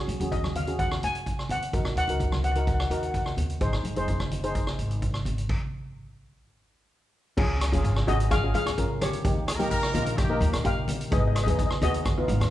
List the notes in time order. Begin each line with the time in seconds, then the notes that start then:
Already playing: C#5
0.08 F#2, closed hi-hat, high conga
0.20 D#2 C#4 F#4 G#4, closed hi-hat, high conga
0.32 D#5, kick, closed hi-hat, low conga
0.44 cross-stick, high conga
0.55 F5, closed hi-hat, low conga
0.67 C#4 F#4 G#4, closed hi-hat
0.79 F#5, kick, closed hi-hat
0.91 cross-stick
1.03 F#2 G#5, closed hi-hat
1.15 closed hi-hat
1.26 kick, closed hi-hat
1.39 cross-stick
1.49 F#2 F#5, closed hi-hat, low conga
1.62 closed hi-hat
1.73 D#2 D#4 F#4 A#4, kick, closed hi-hat
1.84 A#1, cross-stick
1.96 D#2 F#5, closed hi-hat
2.08 C#2 D#4 F#4 A#4, closed hi-hat, high conga
2.20 kick, closed hi-hat, low conga
2.32 cross-stick, high conga
2.43 F#5, closed hi-hat, low conga
2.52 F#5, closed hi-hat
2.56 D#4 F#4 A#4 F#5
2.67 F#5, kick, closed hi-hat
2.74 F#5
2.80 F#5, cross-stick
2.89 D#2 D#4 F#4 A#4 F#5, closed hi-hat
2.97 F#5
3.03 F#5, closed hi-hat
3.11 F#5, kick, closed hi-hat
3.18 F#5
3.26 cross-stick
3.37 D#2, closed hi-hat, low conga
3.50 closed hi-hat
3.61 G#1 D#4 G#4 C5, kick, closed hi-hat
3.73 D#2, cross-stick
3.84 G#1, closed hi-hat, high conga
3.96 F#1 D#4 G#4 C5, closed hi-hat, high conga
4.08 kick, closed hi-hat, low conga
4.20 cross-stick, high conga
4.31 closed hi-hat, low conga
4.43 D#4 G#4 C5, closed hi-hat
4.55 kick, closed hi-hat
4.67 cross-stick
4.78 G#1, closed hi-hat
4.91 closed hi-hat
5.02 kick, closed hi-hat
5.14 cross-stick
5.25 G#1, closed hi-hat, low conga
5.38 closed hi-hat
5.49 kick, crash
7.37 C#2 C#4 F4 G#4, kick, crash
7.61 cross-stick, closed hi-hat
7.72 G#1 C#4 F4 G#4, closed hi-hat, high conga
7.84 kick, closed hi-hat
7.96 cross-stick
8.07 G#1 C#4 F4 F#4 G#4 D#5, closed hi-hat, low conga
8.20 closed hi-hat
8.31 G#4 F5, kick, cross-stick, closed hi-hat
8.43 C#4 F4 G#4
8.54 C#2 G#4 F5, closed hi-hat, high conga
8.66 G#1, cross-stick, closed hi-hat
8.78 C#4 F4 A#4, kick, closed hi-hat
9.02 G4 C#5, cross-stick, closed hi-hat, high conga, low conga
9.13 closed hi-hat
9.24 D#2 A#3 D#4 G4, kick, closed hi-hat
9.48 G#4, cross-stick, closed hi-hat
9.56 A#1 A#3 D#4 G4 A#4, high conga
9.60 closed hi-hat
9.71 A#4, kick, closed hi-hat
9.83 cross-stick
9.94 A#1 A#3 D#4 F4, closed hi-hat, low conga
10.06 closed hi-hat
10.18 G4, kick, cross-stick, closed hi-hat
10.30 A#3 D#4 A#4
10.41 D#2, closed hi-hat, high conga
10.53 A#1, cross-stick, closed hi-hat
10.64 A#3 D#4 G4 A#4 F5, kick, closed hi-hat
10.88 closed hi-hat, high conga, low conga
11.01 closed hi-hat
11.11 G#1 B3 D#4 G#4 D#5, kick, closed hi-hat
11.20 D#5
11.28 D#5
11.35 D#5, cross-stick, closed hi-hat
11.44 D#2 B3 D#4 G#4 D#5, high conga
11.48 D#5, closed hi-hat
11.58 D#5, kick, closed hi-hat
11.67 D#5, cross-stick
11.81 D#2 B3 D#4 F#4 G#4 D#5, closed hi-hat, low conga
11.94 closed hi-hat
12.05 kick, cross-stick, closed hi-hat
12.18 B3 D#4 F4
12.28 G#1, closed hi-hat, high conga
12.40 D#2, cross-stick, closed hi-hat